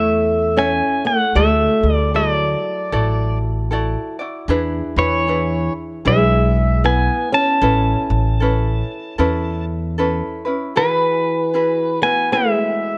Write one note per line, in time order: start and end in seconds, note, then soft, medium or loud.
0.00 0.80 E2 medium
0.00 0.53 A3 medium
0.00 0.57 E4 medium
0.00 0.57 A4 medium
0.00 0.55 C#5 medium
0.00 0.58 E5 medium
0.00 0.60 E5 medium
0.57 1.02 C#4 medium
0.57 1.36 E4 medium
0.57 1.35 A4 medium
0.57 1.35 C#5 medium
0.57 1.35 E5 medium
0.57 1.07 G#5 loud
1.05 1.33 A3 medium
1.05 1.37 F#5 medium
1.35 1.67 D2 loud
1.35 1.90 A3 medium
1.35 2.14 E4 medium
1.35 2.15 F#4 medium
1.35 2.13 A4 medium
1.35 2.15 D5 medium
1.35 1.95 E5 medium
1.83 2.54 D2 medium
1.90 2.10 G3 medium
1.95 2.16 D5 medium
2.14 3.37 F#3 medium
2.14 2.92 E4 medium
2.14 2.92 F#4 medium
2.14 2.91 A4 medium
2.14 2.93 D5 medium
2.14 3.38 D5 medium
2.92 3.94 A1 loud
2.92 3.71 E4 medium
2.92 3.71 F#4 medium
2.92 3.70 A4 medium
2.92 3.73 D5 medium
3.71 4.20 E4 medium
3.71 4.19 F#4 medium
3.71 4.19 A4 medium
3.71 4.18 D5 medium
4.19 4.49 E4 soft
4.19 4.49 F#4 soft
4.19 4.49 D5 medium
4.48 4.80 E2 loud
4.48 4.97 D4 medium
4.48 4.97 E4 medium
4.48 4.97 G#4 medium
4.48 4.96 B4 medium
4.96 5.67 E2 loud
4.96 5.72 E3 medium
4.96 5.27 D4 soft
4.96 5.27 E4 soft
4.96 5.27 B4 medium
4.96 5.72 C#5 loud
5.27 6.04 D4 medium
5.27 6.06 E4 medium
5.27 6.04 G#4 medium
5.27 6.06 B4 medium
6.05 7.07 B1 loud
6.05 6.81 G#3 medium
6.05 6.84 D4 medium
6.05 6.84 E4 medium
6.05 6.84 G#4 medium
6.05 6.85 B4 medium
6.05 6.87 E5 medium
6.84 7.29 B3 medium
6.84 7.62 E4 medium
6.84 7.61 B4 medium
6.84 7.34 G#5 loud
7.32 9.63 C#4 medium
7.32 9.64 A5 loud
7.62 7.93 A1 loud
7.62 8.40 C#4 medium
7.62 8.42 E4 medium
7.62 8.39 A4 medium
7.62 8.42 B4 medium
8.10 8.81 A1 loud
8.40 9.17 C#4 medium
8.40 9.19 E4 medium
8.40 9.17 A4 medium
8.40 9.19 B4 medium
9.18 10.21 E2 loud
9.18 9.97 C#4 medium
9.18 9.98 E4 medium
9.18 9.97 A4 medium
9.18 9.99 B4 medium
9.98 10.46 C#4 medium
9.98 10.45 E4 medium
9.98 10.46 A4 medium
9.98 10.44 B4 medium
10.45 10.76 C#4 soft
10.45 10.75 E4 soft
10.45 10.75 B4 medium
10.76 11.99 E3 medium
10.76 11.54 E4 medium
10.76 11.54 F#4 medium
10.76 11.53 G#4 medium
10.76 11.55 B4 medium
10.76 12.07 B4 medium
11.54 12.02 E4 medium
11.54 12.03 F#4 medium
11.54 12.02 G#4 medium
11.54 12.02 B4 medium
12.02 12.30 B3 medium
12.02 12.32 E4 soft
12.02 12.32 F#4 medium
12.02 12.32 B4 medium
12.02 12.34 G#5 medium
12.32 12.98 G#3 medium
12.32 12.98 E4 medium
12.32 12.98 F#4 medium
12.32 12.98 G#4 medium
12.32 12.98 B4 medium
12.32 12.98 E5 loud